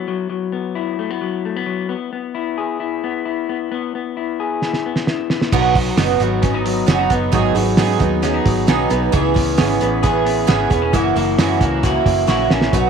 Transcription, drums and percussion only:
4.62 snare soft
4.73 snare soft
4.96 snare medium
5.07 snare medium
5.30 snare medium
5.42 snare medium
5.52 kick loud
5.52 crash medium
5.75 kick loud
5.75 hi-hat pedal medium
5.75 open hi-hat medium
5.98 snare loud
5.98 hi-hat pedal medium
5.98 open hi-hat medium
6.20 hi-hat pedal medium
6.20 open hi-hat medium
6.43 kick medium
6.43 snare soft
6.43 hi-hat pedal medium
6.43 open hi-hat medium
6.65 hi-hat pedal medium
6.65 open hi-hat medium
6.88 snare loud
6.88 hi-hat pedal medium
6.88 open hi-hat medium
7.10 kick medium
7.10 hi-hat pedal medium
7.10 open hi-hat medium
7.33 kick loud
7.33 hi-hat pedal medium
7.33 open hi-hat loud
7.55 hi-hat pedal medium
7.55 open hi-hat medium
7.77 snare loud
7.77 hi-hat pedal medium
7.77 open hi-hat medium
8.00 kick medium
8.00 hi-hat pedal medium
8.00 open hi-hat medium
8.23 snare soft
8.23 hi-hat pedal medium
8.23 open hi-hat medium
8.45 kick medium
8.45 hi-hat pedal medium
8.45 open hi-hat medium
8.68 snare loud
8.68 hi-hat pedal medium
8.68 open hi-hat medium
8.91 hi-hat pedal medium
8.91 open hi-hat medium
9.13 kick loud
9.13 hi-hat pedal medium
9.13 open hi-hat medium
9.36 kick loud
9.36 hi-hat pedal medium
9.36 open hi-hat medium
9.58 snare loud
9.58 hi-hat pedal medium
9.58 open hi-hat loud
9.81 hi-hat pedal medium
9.81 open hi-hat medium
10.03 kick loud
10.03 snare soft
10.03 hi-hat pedal medium
10.03 open hi-hat medium
10.26 hi-hat pedal medium
10.26 open hi-hat medium
10.48 snare loud
10.48 hi-hat pedal medium
10.48 open hi-hat medium
10.71 kick medium
10.71 hi-hat pedal medium
10.71 open hi-hat medium
10.93 kick loud
10.93 hi-hat pedal medium
10.93 open hi-hat loud
11.16 hi-hat pedal medium
11.16 open hi-hat medium
11.38 snare loud
11.38 hi-hat pedal medium
11.38 open hi-hat medium
11.61 kick medium
11.61 hi-hat pedal medium
11.61 open hi-hat medium
11.83 kick loud
11.83 snare soft
11.83 hi-hat pedal medium
11.83 open hi-hat medium
12.06 kick medium
12.06 hi-hat pedal medium
12.06 open hi-hat medium
12.28 snare medium
12.51 snare medium
12.62 snare medium
12.73 kick loud
12.73 hi-hat pedal medium
12.73 open hi-hat loud

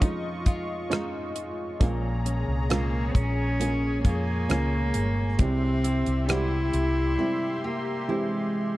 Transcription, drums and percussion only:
0.02 kick medium
0.02 closed hi-hat medium
0.46 kick medium
0.46 closed hi-hat medium
0.92 cross-stick medium
0.92 closed hi-hat medium
1.36 closed hi-hat medium
1.81 kick medium
1.81 closed hi-hat medium
2.26 closed hi-hat medium
2.70 cross-stick medium
2.70 closed hi-hat medium
3.15 kick medium
3.15 closed hi-hat medium
3.61 closed hi-hat medium
4.05 kick medium
4.05 closed hi-hat medium
4.50 cross-stick medium
4.50 closed hi-hat medium
4.94 closed hi-hat medium
5.39 kick medium
5.39 closed hi-hat medium
5.84 closed hi-hat medium
6.06 closed hi-hat soft
6.29 cross-stick medium
6.29 closed hi-hat medium
6.73 closed hi-hat medium

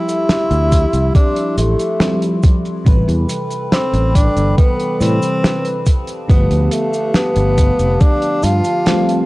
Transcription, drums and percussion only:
0.09 closed hi-hat medium
0.09 cabasa medium
0.29 snare loud
0.29 closed hi-hat medium
0.29 cabasa soft
0.51 closed hi-hat medium
0.72 kick medium
0.72 closed hi-hat loud
0.72 cabasa medium
0.93 closed hi-hat soft
0.93 cabasa medium
1.15 kick loud
1.15 closed hi-hat medium
1.15 cabasa soft
1.36 closed hi-hat medium
1.58 closed hi-hat loud
1.58 cabasa medium
1.79 closed hi-hat medium
1.79 cabasa medium
2.00 snare loud
2.00 closed hi-hat medium
2.00 cabasa soft
2.22 closed hi-hat medium
2.43 kick loud
2.43 closed hi-hat loud
2.43 cabasa medium
2.65 closed hi-hat medium
2.65 cabasa medium
2.87 kick loud
2.87 closed hi-hat medium
2.87 cabasa soft
3.09 closed hi-hat medium
3.29 closed hi-hat loud
3.29 cabasa medium
3.50 closed hi-hat soft
3.50 cabasa medium
3.72 snare loud
3.72 closed hi-hat medium
3.72 cabasa soft
3.94 closed hi-hat medium
4.15 kick medium
4.15 closed hi-hat loud
4.15 cabasa medium
4.37 closed hi-hat medium
4.37 cabasa soft
4.58 kick loud
4.58 closed hi-hat medium
4.58 cabasa soft
4.79 closed hi-hat medium
5.01 closed hi-hat medium
5.01 cabasa medium
5.22 closed hi-hat medium
5.22 cabasa medium
5.44 snare loud
5.44 closed hi-hat medium
5.44 cabasa soft
5.65 closed hi-hat medium
5.86 kick medium
5.86 closed hi-hat medium
5.86 cabasa medium
6.07 closed hi-hat medium
6.07 cabasa soft
6.30 kick loud
6.30 closed hi-hat medium
6.30 cabasa soft
6.51 closed hi-hat medium
6.71 closed hi-hat loud
6.71 cabasa medium
6.94 closed hi-hat medium
6.94 cabasa medium
7.14 snare loud
7.14 closed hi-hat medium
7.14 cabasa soft
7.36 closed hi-hat medium
7.58 kick medium
7.58 closed hi-hat loud
7.58 cabasa medium
7.79 closed hi-hat medium
7.79 cabasa soft
8.01 kick loud
8.01 closed hi-hat medium
8.01 cabasa soft
8.22 closed hi-hat medium
8.43 closed hi-hat medium
8.43 cabasa medium
8.64 closed hi-hat medium
8.64 cabasa medium
8.86 snare loud
8.86 closed hi-hat medium
8.86 cabasa soft
9.09 closed hi-hat medium

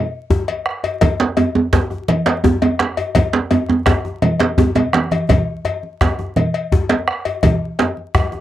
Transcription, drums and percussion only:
0.30 bombo low medium
0.30 djembe slap medium
0.30 djembe tone medium
0.30 high conga soft
0.30 djembe bass medium
0.48 bombo rim soft
0.48 cowbell soft
0.48 high conga soft
0.66 bombo rim medium
0.84 cowbell medium
0.84 djembe tone medium
1.01 bombo low medium
1.01 cowbell medium
1.01 djembe slap medium
1.01 high conga medium
1.01 djembe bass medium
1.01 low conga medium
1.20 djembe slap medium
1.37 cowbell medium
1.37 djembe slap soft
1.37 djembe tone medium
1.55 djembe tone medium
1.55 high conga soft
1.73 bombo low medium
1.73 djembe slap medium
1.73 djembe bass medium
1.90 bombo rim soft
1.90 djembe tone medium
1.90 high conga soft
2.08 cowbell medium
2.08 high conga medium
2.08 low conga medium
2.26 cowbell soft
2.26 djembe slap medium
2.44 bombo low medium
2.44 djembe slap medium
2.44 djembe tone medium
2.44 high conga soft
2.44 djembe bass medium
2.62 bombo rim soft
2.62 cowbell soft
2.62 djembe tone medium
2.62 high conga soft
2.79 bombo rim medium
2.79 djembe slap medium
2.97 cowbell soft
2.97 djembe tone medium
3.15 bombo low medium
3.15 cowbell medium
3.15 djembe slap medium
3.15 high conga medium
3.15 djembe bass medium
3.15 low conga medium
3.33 bombo rim soft
3.33 djembe slap medium
3.51 bombo rim soft
3.51 cowbell soft
3.51 djembe slap soft
3.51 djembe tone medium
3.51 high conga soft
3.69 bombo rim soft
3.69 djembe tone medium
3.69 high conga soft
3.86 bombo rim medium
3.86 bombo low medium
3.86 cowbell medium
3.86 djembe slap medium
3.86 djembe bass medium
4.05 djembe tone medium
4.05 high conga soft
4.22 cowbell medium
4.22 high conga medium
4.22 low conga medium
4.40 cowbell medium
4.40 djembe slap medium
4.40 low conga soft
4.57 bombo low loud
4.57 djembe slap medium
4.57 djembe tone medium
4.57 low conga soft
4.57 djembe bass medium
4.75 cowbell medium
4.75 djembe slap soft
4.75 djembe tone medium
4.75 low conga medium
4.93 bombo rim loud
4.93 djembe slap medium
4.93 high conga medium
5.11 bombo rim soft
5.11 cowbell medium
5.11 high conga medium
5.11 djembe tone medium
5.29 bombo low loud
5.29 cowbell medium
5.29 djembe slap medium
5.29 high conga medium
5.29 low conga medium
5.29 djembe bass medium
5.65 cowbell medium
5.65 djembe slap soft
5.65 djembe tone medium
5.83 high conga soft
6.01 bombo rim loud
6.01 bombo low loud
6.01 cowbell medium
6.01 djembe slap medium
6.01 djembe bass medium
6.19 bombo rim soft
6.19 djembe slap soft
6.19 high conga soft
6.19 djembe tone medium
6.36 cowbell medium
6.36 high conga medium
6.36 low conga medium
6.54 cowbell soft
6.72 bombo low loud
6.72 djembe slap medium
6.72 high conga soft
6.72 djembe tone medium
6.72 djembe bass medium
6.89 bombo rim soft
6.89 cowbell soft
6.89 djembe slap medium
6.89 high conga soft
7.08 bombo rim loud
7.25 cowbell soft
7.25 djembe tone medium
7.43 bombo low loud
7.43 cowbell medium
7.43 djembe slap medium
7.43 high conga medium
7.43 low conga medium
7.43 djembe bass medium
7.79 cowbell soft
7.79 djembe slap medium
7.79 djembe slap soft
7.79 djembe tone medium
7.97 high conga soft
8.15 bombo rim loud
8.15 bombo low loud
8.15 cowbell soft
8.15 djembe slap medium
8.15 djembe bass medium
8.32 bombo rim soft
8.32 djembe slap soft
8.32 djembe tone medium
8.32 high conga soft

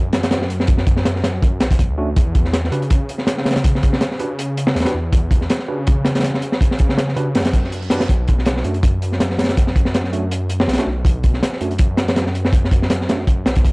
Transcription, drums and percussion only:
0.13 snare loud
0.13 closed hi-hat medium
0.23 snare loud
0.23 closed hi-hat medium
0.31 snare loud
0.31 closed hi-hat medium
0.42 snare medium
0.50 closed hi-hat medium
0.60 snare medium
0.67 kick loud
0.67 closed hi-hat medium
0.78 snare medium
0.87 kick loud
0.87 closed hi-hat medium
0.96 snare medium
1.05 snare loud
1.05 closed hi-hat medium
1.16 snare soft
1.24 snare loud
1.24 closed hi-hat medium
1.42 kick loud
1.42 closed hi-hat medium
1.60 snare loud
1.60 closed hi-hat medium
1.71 kick loud
1.71 closed hi-hat medium
1.79 kick loud
1.79 closed hi-hat medium
2.16 kick loud
2.16 closed hi-hat loud
2.35 kick loud
2.35 closed hi-hat medium
2.45 snare soft
2.53 snare loud
2.53 closed hi-hat medium
2.64 snare soft
2.72 closed hi-hat medium
2.82 closed hi-hat soft
2.90 kick loud
2.90 closed hi-hat medium
3.09 closed hi-hat medium
3.18 snare soft
3.27 snare loud
3.27 closed hi-hat loud
3.38 snare medium
3.45 snare medium
3.45 closed hi-hat medium
3.51 snare medium
3.51 closed hi-hat medium
3.56 snare loud
3.56 closed hi-hat medium
3.64 kick loud
3.64 closed hi-hat loud
3.75 snare medium
3.83 kick loud
3.83 closed hi-hat medium
3.93 snare medium
4.01 snare loud
4.01 closed hi-hat medium
4.11 snare soft
4.19 closed hi-hat medium
4.39 closed hi-hat medium
4.57 closed hi-hat medium
4.67 snare loud
4.75 snare medium
4.75 closed hi-hat medium
4.80 snare medium
4.80 closed hi-hat medium
4.85 snare medium
4.85 closed hi-hat medium
5.13 kick loud
5.13 closed hi-hat medium
5.31 kick loud
5.31 closed hi-hat medium
5.41 snare soft
5.50 snare loud
5.50 closed hi-hat medium
5.59 snare soft
5.87 kick loud
5.87 closed hi-hat medium
6.05 snare loud
6.05 closed hi-hat medium
6.15 snare loud
6.15 closed hi-hat medium
6.19 snare medium
6.19 closed hi-hat medium
6.23 snare loud
6.23 closed hi-hat medium
6.34 snare medium
6.42 closed hi-hat medium
6.52 snare medium
6.61 kick loud
6.61 closed hi-hat medium
6.71 snare medium
6.79 kick loud
6.79 closed hi-hat medium
6.89 snare medium
6.98 snare loud
6.98 closed hi-hat medium
7.08 snare soft
7.17 closed hi-hat medium
7.35 snare loud
7.35 closed hi-hat medium
7.40 snare medium
7.40 closed hi-hat medium
7.45 snare loud
7.45 closed hi-hat medium
7.53 kick medium
7.53 closed hi-hat medium
7.64 snare soft
7.72 closed hi-hat medium
7.82 closed hi-hat soft
7.90 snare loud
7.90 closed hi-hat medium
8.00 snare loud
8.00 closed hi-hat medium
8.09 kick loud
8.09 closed hi-hat medium
8.28 kick medium
8.28 closed hi-hat medium
8.38 snare soft
8.46 snare loud
8.46 closed hi-hat medium
8.57 snare soft
8.64 closed hi-hat medium
8.74 closed hi-hat soft
8.83 kick loud
8.83 closed hi-hat medium
9.02 closed hi-hat medium
9.12 snare soft
9.20 snare loud
9.20 closed hi-hat medium
9.30 snare soft
9.39 snare medium
9.39 closed hi-hat medium
9.44 snare medium
9.44 closed hi-hat medium
9.49 snare loud
9.49 closed hi-hat medium
9.57 kick loud
9.57 closed hi-hat medium
9.67 snare medium
9.76 kick loud
9.76 closed hi-hat medium
9.85 snare medium
9.94 snare loud
9.94 closed hi-hat medium
10.04 snare soft
10.13 closed hi-hat medium
10.31 closed hi-hat medium
10.49 closed hi-hat medium
10.60 snare loud
10.68 snare medium
10.68 closed hi-hat medium
10.73 snare loud
10.73 closed hi-hat medium
10.78 snare loud
10.78 closed hi-hat medium
11.05 kick loud
11.05 closed hi-hat medium
11.23 kick medium
11.23 closed hi-hat medium
11.34 snare soft
11.43 snare loud
11.43 closed hi-hat medium
11.53 snare soft
11.61 closed hi-hat medium
11.71 closed hi-hat soft
11.78 kick loud
11.78 closed hi-hat loud
11.97 snare loud
11.97 closed hi-hat medium
12.08 snare loud
12.08 closed hi-hat medium
12.16 snare loud
12.16 closed hi-hat medium
12.26 snare soft
12.35 closed hi-hat medium
12.45 snare medium
12.53 kick loud
12.53 closed hi-hat medium
12.65 snare medium
12.71 kick loud
12.71 closed hi-hat medium
12.82 snare medium
12.90 snare loud
12.90 closed hi-hat medium
13.01 snare soft
13.09 snare loud
13.09 closed hi-hat medium
13.27 kick medium
13.27 closed hi-hat medium
13.46 snare loud
13.46 closed hi-hat medium
13.55 kick loud
13.55 closed hi-hat medium
13.65 kick medium
13.65 closed hi-hat medium

